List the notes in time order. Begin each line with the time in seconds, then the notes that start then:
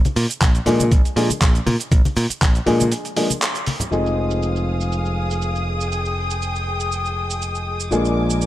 0.05 closed hi-hat, high conga, cabasa, maracas
0.16 A#2, open hi-hat, maracas
0.30 closed hi-hat, cabasa, maracas
0.41 A#1, kick, clap, closed hi-hat, high conga, cabasa, maracas
0.55 closed hi-hat, cabasa, maracas
0.66 A#2 F3 G#3 A#3 D4 G#4, open hi-hat, low conga, maracas
0.80 closed hi-hat, high conga, cabasa, maracas
0.92 A#1, kick, closed hi-hat, cabasa, maracas
1.05 closed hi-hat, cabasa, maracas
1.16 A#2 F3 G#3 A#3 D4 G#4, open hi-hat, maracas
1.30 muted picked electric bass stroke, closed hi-hat, high conga, cabasa, maracas
1.41 A#1, kick, clap, closed hi-hat, cabasa, maracas
1.55 closed hi-hat, cabasa, maracas
1.66 A#2, open hi-hat, high conga, maracas
1.80 closed hi-hat, cabasa, maracas
1.92 A#1, kick, closed hi-hat, cabasa, maracas
2.05 closed hi-hat, high conga, cabasa, maracas
2.16 A#2, open hi-hat, maracas
2.30 muted picked electric bass stroke, closed hi-hat, cabasa, maracas
2.42 A#1, kick, clap, closed hi-hat, high conga, cabasa, maracas
2.55 closed hi-hat, cabasa, maracas
2.66 A#2 F3 G#3 A#3 D4 G#4, open hi-hat, low conga, maracas
2.80 closed hi-hat, high conga, cabasa, maracas
2.92 closed hi-hat, cabasa, maracas
3.05 closed hi-hat, cabasa, maracas
3.16 F3 G#3 A#3 D4 G#4, open hi-hat, maracas
3.30 closed hi-hat, high conga, cabasa, maracas
3.42 clap, closed hi-hat, cabasa, maracas
3.55 closed hi-hat, cabasa, maracas
3.67 open hi-hat, high conga, maracas
3.80 closed hi-hat, low conga, cabasa, maracas
3.91 F1 F3 G#3 C4 D#4 G#4 F5 D#6, cabasa
4.06 cabasa
4.31 cabasa
4.42 cabasa
4.56 cabasa
4.80 cabasa
4.92 cabasa
5.05 cabasa
5.30 cabasa
5.42 cabasa
5.55 cabasa
5.80 cabasa
5.92 G5, cabasa
6.05 cabasa
6.30 cabasa
6.42 cabasa
6.55 cabasa
6.80 cabasa
6.92 cabasa
7.05 cabasa
7.30 cabasa
7.42 cabasa
7.55 cabasa
7.80 cabasa
7.91 A#1 F3 G#3 A#3 D4 G#4 A#4 G#5 D6, cabasa
8.05 cabasa
8.30 cabasa
8.41 cabasa